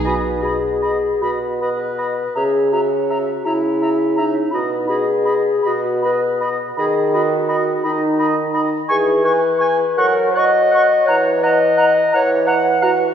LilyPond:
<<
  \new Staff \with { instrumentName = "Flute" } { \time 6/8 \key b \major \tempo 4. = 55 b''8 b''8 b''8 b''8 b''8 b''8 | ais''8 ais''8 ais''8 ais''8 ais''8 ais''8 | b''8 b''8 b''8 b''8 b''8 b''8 | b''8 b''8 b''8 b''8 b''8 b''8 |
cis'''8 cis'''8 cis'''8 cis'''8 cis'''8 cis'''8 | ais''8 ais''8 ais''8 ais''8 ais''8 ais''8 | }
  \new Staff \with { instrumentName = "Oboe" } { \time 6/8 \key b \major dis''8 dis''8 dis''8 dis''8 dis''8 dis''8 | e''8 e''8 e''8 e''8 e''8 e''8 | dis''8 dis''8 dis''8 dis''8 dis''8 dis''8 | dis''8 dis''8 dis''8 dis''8 dis''8 dis''8 |
gis''8 gis''8 gis''8 fis''8 fis''8 fis''8 | fis''8 fis''8 fis''8 fis''8 fis''8 fis''8 | }
  \new Staff \with { instrumentName = "Clarinet" } { \time 6/8 \key b \major fis'8 gis'4 fis'8 b'4 | gis'8 fis'4 e'4 dis'8 | fis'8 gis'4 fis'8 b'8 r8 | gis'8 fis'4 dis'4 r8 |
gis'8 b'4 ais'8 dis''4 | cis''8 dis''4 cis''8 fis''8 fis'8 | }
  \new Staff \with { instrumentName = "Bassoon" } { \clef bass \time 6/8 \key b \major b,4. b,4. | cis4. cis4. | b,4. b,4. | dis4. dis4. |
e4. fis4. | e4. e4. | }
>>